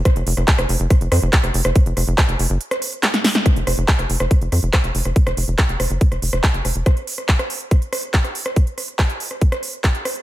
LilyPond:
<<
  \new Staff \with { instrumentName = "Analog synth bass" } { \clef bass \time 4/4 \key ges \lydian \tempo 4 = 141 r16 f,,16 f,,16 f,,16 r16 f,,16 f,,16 f,,16 r16 f,,16 f,16 f,,16 r16 f,,16 f,,16 f,,16 | r16 f,,16 f,,16 f,,16 r16 f,,16 f,,16 ges,,16 r2 | r16 f,,16 f,,16 f,,16 r16 f,,16 f,,16 f,,16 r16 f,,16 f,16 f,,16 r16 f,,16 f,,16 f,,16 | r16 f,,16 f,,16 f,,16 r16 f,,16 f,,16 ges,,16 r16 f,,16 f,,16 f,,16 r16 ges,,16 f,,16 f,,16 |
r1 | r1 | }
  \new DrumStaff \with { instrumentName = "Drums" } \drummode { \time 4/4 <hh bd ss>16 hh16 hho16 <hh ss>16 <hc hh bd>16 <hh ss>16 hho16 hh16 <hh bd ss>16 hh16 <hho ss>16 hh16 <hc hh bd>16 <hh ss>16 hho16 <hh ss>16 | <hh bd>16 hh16 <hho ss>16 hh16 <hc hh bd ss>16 hh16 hho16 hh16 hh16 <hh ss>16 hho16 hh16 <hc hh sn>16 <hh sn>16 <hho sn>16 sn16 | <hh bd ss>16 hh16 <hho ss>16 hh16 <hc hh bd>16 <hh ss>16 hho16 ss16 <hh bd>16 hh16 <hho ss>16 hh16 <hc hh bd ss>16 hh16 hho16 <hh ss>16 | <hh bd>16 <hh ss>16 hho16 hh16 <hc hh bd ss>16 hh16 <hho ss>16 hh16 <hh bd>16 <hh ss>16 hho16 <hh ss>16 <hc hh bd>16 hh16 <hho ss>16 hh16 |
<hh bd ss>16 hh16 hho16 <hh ss>16 <hc hh bd>16 <hh ss>16 hho16 hh16 <hh bd ss>16 hh16 <hho ss>16 hh16 <hc hh bd>16 <hh ss>16 hho16 <hh ss>16 | <hh bd>16 hh16 <hho ss>16 hh16 <hc hh bd ss>16 hh16 hho16 <hh ss>16 <hh bd>16 <hh ss>16 hho16 hh16 <hc hh bd ss>16 hh16 <hho ss>16 hh16 | }
>>